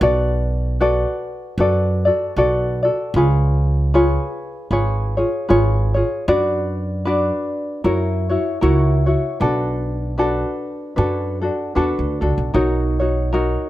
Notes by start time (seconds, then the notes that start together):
0.01 B1 F#4 A4 B4 D5
0.80 F#4 A4 B4 D5
1.58 F#2 F#4 A4 B4 D5
2.05 F#4 A4 D5
2.36 B1 F#4 A4 B4 D5
2.83 F#4 A4 D5
3.14 C#2 F4 G#4 B4 C#5
3.94 F4 G#4 B4 C#5
4.71 G#1 F4 G#4 B4 C#5
5.17 F4 G#4 C#5
5.49 G#1 F4 G#4 B4 C#5
5.94 F4 G#4 C#5
6.28 F#2 D4 F#4 B4 D5
7.05 D4 F#4 B4 D5
7.84 F#2 E4 F#4 A#4 C#5
8.29 E4 F#4 C#5
8.61 C#2 E4 F#4 A#4 C#5
9.06 E4 F#4 C#5
9.40 B1 D4 F#4 A4 B4
10.18 D4 F#4 A4 B4
10.96 F#2 D4 F#4 A4 B4
11.41 D4 F#4 A4
11.75 E2 D4 F#4 A4 B4
11.99 D2
12.21 C#2 D4 F#4 A4
12.38 B1
12.54 B1 D#4 F#4 A#4 C#5
13.00 D#4 F#4 C#5
13.33 D#4 F#4 A#4 C#5